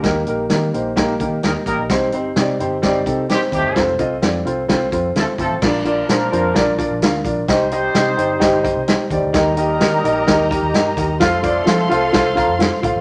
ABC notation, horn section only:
X:1
M:4/4
L:1/16
Q:1/4=129
K:Bb
V:1 name="Horn section"
z12 [G,B,EB] z [G,B,EB]2 | z12 [E,G,CG] z [C,G,A,G]2- | [C,G,A,G] z8 z3 [F,A,CA] z [F,A,CA]2 | [F,B,DB]12- [F,B,DB]2 z2 |
[G,CEc]12- [G,CEc]2 z2 | [G,B,EB]12- [G,B,EB]2 z2 | [F,A,CA]12- [F,A,CA]2 z2 |]